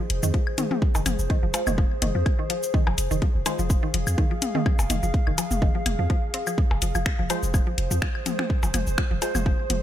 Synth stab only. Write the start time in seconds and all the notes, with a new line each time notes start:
1.54 G#3 F4 C5
3.46 G#3 F4 C5
7.30 G#3 F4 C5
9.22 G#3 F4 C5